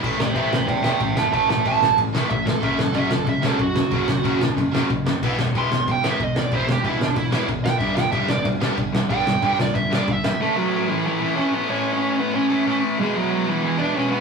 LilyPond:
<<
  \new Staff \with { instrumentName = "Lead electric guitar" } { \time 4/4 \key a \major \tempo 4 = 186 r8 <c'' e''>8 <c'' e''>8 <c'' e''>8 <e'' g''>8 <e'' g''>8 <e'' g''>8 <e'' a''>8 | <e'' a''>8 <e'' a''>8 a''4 r4 e''8 a'8 | e''8 a'8 e''8 a'8 e''8 a'8 fis'4~ | fis'2 r2 |
r4 c'''4 g''8 e''8 dis''8 d''8 | c''8 g'8 e'8 d'8 e'4 r8 g''8 | e''8 g''8 e''8 d''8 r2 | g''4. d''8 e''8 d''8 e''8 e''8 |
<a a'>8 <fis fis'>4 <e e'>8 <e e'>4 <cis' cis''>8 <b b'>8 | <cis' cis''>8. <cis' cis''>8. <b b'>8 <cis' cis''>4. r8 | <gis gis'>8 <fis fis'>4 <e e'>8 <e e'>8 <d' d''>8 <cis' cis''>8 <b b'>8 | }
  \new Staff \with { instrumentName = "Overdriven electric guitar" } { \clef bass \time 4/4 \key a \major <a, e a>8 <a, e>8 <a, e a>8 <a, e>8 <a, e>8 <a, e a>8 <a, e>8 <a, e>8 | <a, e a>8 <a, e>8 <a, e a>8 <a, e>8 <a, e>8 <a, e a>8 <a, e>8 <a, e>8 | <fis a cis'>8 <fis a>8 <fis a cis'>8 <fis a>8 <fis a>8 <fis a cis'>8 <fis a>8 <fis a>8 | <fis a cis'>8 <fis a>8 <fis a cis'>8 <fis a>8 <fis a>8 <fis a cis'>8 <fis a>8 <fis a>8 |
<e b e'>8 <e b>8 <e b e'>8 <e b>8 <e b>8 <e b e'>8 <e b>8 <e b>8 | <e b e'>8 <e b>8 <e b e'>8 <e b>8 <e b>8 <e b e'>8 <e b>8 <e b>8 | <g b d'>8 <g b>8 <g b d'>8 <g b>8 <g b>8 <g b d'>8 <g b>8 <g b>8 | <g b d'>8 <g b>8 <g b d'>8 <g b>8 <g b>8 <g b d'>8 <g b>8 <g b>8 |
r1 | r1 | r1 | }
  \new Staff \with { instrumentName = "Distorted electric guitar" } { \clef bass \time 4/4 \key a \major <a, e a>8 <a, e>8 <a, e a>8 <a, e>8 <a, e>8 <a, e a>8 <a, e>8 <a, e>8 | <a, e a>8 <a, e>8 <a, e a>8 <a, e>8 <a, e>8 <a, e a>8 <a, e>8 <a, e>8 | <fis, cis fis>8 <fis, cis>8 <fis, cis fis>8 <fis, cis>8 <fis, cis>8 <fis, cis fis>8 <fis, cis>8 <fis, cis>8 | <fis, cis fis>8 <fis, cis>8 <fis, cis fis>8 <fis, cis>8 <fis, cis>8 <fis, cis fis>8 <fis, cis>8 <fis, cis>8 |
<e, b, e>8 <e, b,>8 <e, b, e>8 <e, b,>8 <e, b,>8 <e, b, e>8 <e, b,>8 <e, b,>8 | <e, b, e>8 <e, b,>8 <e, b, e>8 <e, b,>8 <e, b,>8 <e, b, e>8 <e, b,>8 <e, b,>8 | <g, d g>8 <g, d>8 <g, d g>8 <g, d>8 <g, d>8 <g, d g>8 <g, d>8 <g, d>8 | <g, d g>8 <g, d>8 <g, d g>8 <g, d>8 <g, d>8 <g, d g>8 <g, d>8 <g, d>8 |
<a, e a>2~ <a, e a>8 <a, e a>8 <a, e a>4 | <a, e a>2~ <a, e a>8 <a, e a>8 <a, e a>4 | <e, b, e>2~ <e, b, e>8 <e, b, e>8 <e, b, e>4 | }
  \new Staff \with { instrumentName = "Picked electric bass" } { \clef bass \time 4/4 \key a \major a,,8 a,,8 a,,4 e,8 e,8 a,,8 fis,,8 | a,,8 a,,8 a,,8 a,,8 a,,4 a,,8 gis,,8 | fis,,8 fis,,8 fis,,4 cis,8 cis,8 fis,,8 e,,8 | fis,,8 fis,,8 fis,,8 fis,,8 fis,,4 fis,,8 fis,,8 |
e,,8 e,,8 e,,4 b,,8 b,,8 e,,8 d,8 | e,,8 e,,8 e,,8 e,,8 e,,4 e,,8 e,,8 | g,,8 g,,8 g,,4 d,8 d,8 g,,8 e,,8 | g,,8 g,,8 g,,8 g,,8 g,,4 g,,8 g,,8 |
r1 | r1 | r1 | }
  \new DrumStaff \with { instrumentName = "Drums" } \drummode { \time 4/4 <cymc bd>8 sn16 bd16 <bd cymr>8 sn16 bd16 <bd cymr>8 sn8 <bd cymr>8 sn8 | <bd cymr>8 sn16 bd16 <bd cymr>8 sn16 bd16 <bd cymr>8 sn8 <bd cymr>8 sn8 | <bd cymr>8 sn16 bd16 <bd cymr>8 sn16 bd16 <bd cymr>8 sn8 <bd cymr>8 sn8 | <bd cymr>8 sn16 bd16 <bd cymr>8 sn16 bd16 <bd cymr>8 sn8 <bd cymr>8 sn8 |
<cymc bd>8 sn16 bd16 <bd cymr>8 sn16 bd16 <bd cymr>8 sn8 <bd cymr>8 sn8 | <bd cymr>8 sn16 bd16 <bd cymr>8 sn16 bd16 <bd cymr>8 sn8 <bd cymr>8 sn8 | <bd cymr>8 sn16 bd16 <bd cymr>8 sn16 bd16 <bd cymr>8 sn8 <bd cymr>8 sn8 | <bd cymr>8 sn16 bd16 <bd cymr>8 sn16 bd16 <bd cymr>8 sn8 <bd cymr>8 sn8 |
r4 r4 r4 r4 | r4 r4 r4 r4 | r4 r4 r4 r4 | }
>>